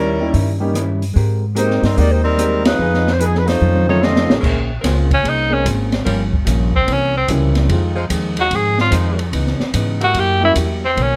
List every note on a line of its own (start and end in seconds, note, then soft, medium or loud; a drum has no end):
0.00 0.30 D#2 medium
0.00 0.20 D#3 medium
0.00 0.21 G3 medium
0.00 0.62 G3 medium
0.00 0.21 C#4 medium
0.00 0.62 C#4 medium
0.00 0.21 E4 medium
0.00 0.62 E4 medium
0.00 0.62 A#4 medium
0.20 0.33 G3 medium
0.20 0.33 A#3 medium
0.20 0.33 C#4 medium
0.20 0.33 D#4 medium
0.20 0.34 E4 medium
0.32 1.12 G2 medium
0.32 0.61 D#3 medium
0.32 0.62 G3 soft
0.32 0.62 C#4 medium
0.32 0.63 E4 medium
0.32 kick soft
0.32 open hi-hat medium
0.60 0.73 G3 medium
0.60 0.73 A#3 medium
0.60 0.73 C#4 medium
0.60 0.73 D#4 medium
0.60 0.73 G4 medium
0.74 1.02 D#3 medium
0.74 1.03 G3 medium
0.74 1.03 C#4 medium
0.74 1.04 E4 medium
0.74 cross-stick medium
0.74 closed hi-hat medium
1.02 open hi-hat soft
1.14 1.79 G#2 medium
1.14 1.43 G#3 medium
1.14 1.44 C4 medium
1.14 1.44 G4 medium
1.14 1.45 A#4 medium
1.14 kick soft
1.14 open hi-hat soft
1.55 1.84 G#3 medium
1.55 1.81 G#3 medium
1.55 1.82 A#3 medium
1.55 1.81 A#3 medium
1.55 1.84 C4 medium
1.55 1.82 C4 medium
1.55 1.82 D#4 medium
1.55 1.84 G4 medium
1.55 1.82 G4 medium
1.55 1.85 A#4 medium
1.55 1.82 C5 medium
1.55 closed hi-hat medium
1.59 1.82 D#4 medium
1.59 1.82 G4 medium
1.71 snare soft
1.83 1.96 G2 medium
1.83 1.96 G3 medium
1.83 1.96 C4 medium
1.83 1.96 D#4 medium
1.83 1.96 A#4 medium
1.83 snare soft
1.83 open hi-hat soft
1.97 2.75 D#2 medium
1.97 2.25 G#3 soft
1.97 2.10 A#3 medium
1.97 2.25 C4 soft
1.97 2.10 D#4 medium
1.97 2.10 G4 medium
1.97 2.26 G4 soft
1.97 2.26 A#4 soft
1.97 2.11 D5 medium
1.97 kick soft
1.97 open hi-hat soft
2.10 2.24 A#3 medium
2.10 2.22 D#4 medium
2.10 2.24 G4 medium
2.10 2.24 C5 medium
2.23 2.61 G3 medium
2.23 2.62 C4 medium
2.23 2.61 D#4 medium
2.23 2.62 A#4 medium
2.38 2.66 G#3 medium
2.38 2.66 C4 medium
2.38 2.67 G4 medium
2.38 2.67 A#4 medium
2.38 cross-stick medium
2.38 closed hi-hat medium
2.65 3.09 G#3 medium
2.65 3.09 D#4 medium
2.65 3.08 F4 medium
2.65 3.09 B4 medium
2.65 snare medium
2.65 ride medium
2.79 3.57 F2 medium
2.79 3.07 F3 medium
2.79 3.08 B3 medium
2.79 3.08 D#4 soft
2.79 3.09 G#4 medium
2.94 snare soft
3.07 snare soft
3.12 3.16 C5 medium
3.19 3.48 F3 medium
3.19 3.48 B3 medium
3.19 3.48 D#4 medium
3.19 3.49 G#4 medium
3.19 3.25 B4 medium
3.19 closed hi-hat medium
3.25 3.36 G#4 medium
3.35 3.48 B4 medium
3.35 snare soft
3.47 3.87 A3 medium
3.47 3.87 D#4 medium
3.47 3.88 F4 medium
3.47 3.88 C5 medium
3.47 snare soft
3.47 open hi-hat soft
3.61 4.25 F2 medium
3.61 3.89 F2 soft
3.61 3.90 D#3 soft
3.61 3.90 A3 soft
3.61 3.91 C#4 soft
3.61 high tom soft
3.75 high tom medium
3.87 4.25 D#3 medium
3.87 4.01 A3 medium
3.87 4.26 A3 medium
3.87 4.26 C4 medium
3.87 4.27 C#4 medium
3.87 4.01 D#4 medium
3.87 4.01 F4 medium
3.87 4.26 F4 medium
3.87 4.01 C#5 loud
3.87 high tom medium
4.02 4.31 F2 medium
4.02 4.31 D#3 medium
4.02 4.32 A3 medium
4.02 4.36 C4 medium
4.02 4.31 C#4 medium
4.02 4.36 F4 medium
4.02 4.36 A4 medium
4.02 4.36 D#5 loud
4.02 snare medium
4.16 snare medium
4.29 4.42 A1 medium
4.29 4.41 G#3 medium
4.29 4.41 A#3 medium
4.29 4.42 C4 medium
4.29 4.42 C#4 medium
4.29 4.42 G#4 medium
4.29 snare medium
4.41 4.83 A#1 medium
4.41 4.60 G#3 medium
4.41 4.71 A#3 medium
4.41 4.60 C4 medium
4.41 4.59 C#4 medium
4.41 4.71 C#4 medium
4.41 4.60 A#4 medium
4.41 kick medium
4.41 crash medium
4.45 4.72 G#4 medium
4.45 4.72 C5 medium
4.81 5.23 C#2 medium
4.81 5.00 G#3 medium
4.81 5.07 G#3 soft
4.81 5.08 A#3 soft
4.81 5.12 A#3 medium
4.81 5.00 C4 medium
4.81 5.08 C4 soft
4.81 5.01 C#4 medium
4.81 5.12 C#4 medium
4.81 5.08 C#4 soft
4.81 5.08 F4 medium
4.81 5.12 G#4 medium
4.81 5.00 A#4 medium
4.81 kick soft
4.81 snare soft
4.81 hi-hat pedal medium
4.81 ride medium
4.85 5.13 C5 medium
5.11 5.30 C#4 medium
5.11 kick medium
5.11 ride soft
5.23 5.64 C2 medium
5.23 5.52 A#3 soft
5.23 5.53 C#4 soft
5.23 5.53 G#4 soft
5.23 5.53 C5 soft
5.23 kick soft
5.23 ride medium
5.29 5.55 D#4 medium
5.50 5.63 G#3 medium
5.50 5.63 A#3 medium
5.50 5.63 C4 medium
5.50 5.63 C#4 medium
5.50 5.66 C#4 medium
5.50 5.63 G#4 medium
5.64 6.05 G#1 medium
5.64 5.93 A#3 medium
5.64 5.93 C#4 medium
5.64 5.94 G#4 medium
5.64 5.94 C5 medium
5.64 kick soft
5.64 hi-hat pedal medium
5.64 ride medium
5.92 snare soft
5.92 ride soft
6.05 6.46 G1 medium
6.05 6.34 G2 medium
6.05 6.34 F3 medium
6.05 6.23 G3 medium
6.05 6.34 A#3 medium
6.05 6.24 C#4 medium
6.05 6.35 C#4 medium
6.05 6.23 F4 medium
6.05 6.23 A#4 medium
6.05 kick soft
6.05 ride medium
6.33 kick medium
6.45 6.86 A#1 medium
6.45 6.74 G2 medium
6.45 6.74 F3 medium
6.45 6.75 A#3 medium
6.45 6.75 C#4 medium
6.45 kick soft
6.45 hi-hat pedal medium
6.45 ride medium
6.74 6.94 C4 medium
6.74 kick soft
6.84 7.28 C2 medium
6.84 7.14 C3 soft
6.84 7.15 E3 soft
6.84 7.15 A#3 soft
6.84 7.16 C#4 medium
6.84 kick soft
6.84 ride medium
6.92 7.17 C#4 medium
7.17 7.29 C4 medium
7.27 7.68 C#2 medium
7.27 7.56 C3 medium
7.27 7.57 E3 medium
7.27 7.70 G3 medium
7.27 7.57 A#3 medium
7.27 7.70 A#3 medium
7.27 7.70 C4 medium
7.27 7.70 C#4 medium
7.27 7.58 C#4 medium
7.27 7.70 E4 medium
7.27 kick soft
7.27 hi-hat pedal soft
7.27 ride medium
7.55 snare soft
7.55 ride soft
7.66 7.96 F2 medium
7.66 8.09 F2 medium
7.66 7.97 D#3 medium
7.66 7.94 F3 medium
7.66 7.98 G#3 medium
7.66 7.98 C4 medium
7.66 kick soft
7.66 ride medium
7.71 7.94 G#3 medium
7.71 7.95 C4 medium
7.71 7.95 D#4 medium
7.71 7.95 F4 medium
7.95 8.05 G#3 medium
7.95 8.05 D#4 medium
7.95 8.05 F4 medium
7.95 8.05 C5 loud
8.09 8.50 D#2 medium
8.09 8.38 F2 medium
8.09 8.38 D#3 medium
8.09 8.39 G#3 medium
8.09 8.39 C4 medium
8.09 kick soft
8.09 hi-hat pedal medium
8.09 ride medium
8.37 8.47 G#3 medium
8.37 8.47 D#4 medium
8.37 8.47 F4 medium
8.37 8.57 F#4 medium
8.37 8.47 G#4 medium
8.37 ride medium
8.51 8.80 F2 soft
8.51 8.91 G#2 medium
8.51 8.80 D#3 soft
8.51 8.81 G#3 soft
8.51 8.81 C4 soft
8.51 kick soft
8.51 ride medium
8.55 8.80 G#4 medium
8.78 8.93 F4 medium
8.78 snare soft
8.90 9.19 F2 medium
8.90 9.32 F2 medium
8.90 9.20 D#3 medium
8.90 9.32 G#3 loud
8.90 9.20 G#3 medium
8.90 9.21 C4 medium
8.90 9.33 D#4 medium
8.90 9.33 F4 medium
8.90 9.33 C5 loud
8.90 kick soft
8.90 hi-hat pedal medium
8.90 ride medium
9.19 ride soft
9.32 9.58 C#2 medium
9.32 9.61 C#3 medium
9.32 9.61 E3 medium
9.32 9.62 B3 medium
9.32 9.62 D#4 medium
9.32 kick soft
9.32 ride medium
9.47 snare soft
9.60 muted upright bass stroke soft
9.60 snare soft
9.74 10.14 G#2 medium
9.74 10.02 C#3 medium
9.74 10.03 E3 medium
9.74 10.03 B3 medium
9.74 10.03 D#4 medium
9.74 kick soft
9.74 hi-hat pedal medium
9.74 ride medium
10.00 10.53 A#3 medium
10.00 10.53 E4 medium
10.00 10.53 F#4 medium
10.00 10.21 F#4 medium
10.00 10.53 G4 loud
10.00 ride soft
10.14 10.55 F#2 medium
10.14 10.43 F#3 soft
10.14 10.44 A#3 soft
10.14 10.44 E4 soft
10.14 kick soft
10.14 ride medium
10.19 10.45 G4 soft
10.19 10.44 G4 loud
10.41 10.54 G3 medium
10.41 10.55 A#3 medium
10.41 10.55 C#4 medium
10.41 10.55 E4 medium
10.41 10.52 E4 medium
10.41 10.55 F#4 medium
10.55 10.96 E2 medium
10.55 10.84 F#3 medium
10.55 10.84 A#3 medium
10.55 10.85 E4 medium
10.55 10.85 G4 medium
10.55 kick soft
10.55 hi-hat pedal medium
10.55 ride medium
10.85 11.04 C4 medium
10.95 11.16 B1 medium
10.95 11.16 B2 medium
10.95 11.16 D#3 medium
10.95 11.16 A#3 medium
10.95 11.16 C#4 medium
10.95 kick soft
10.95 ride medium
11.02 11.16 C#4 medium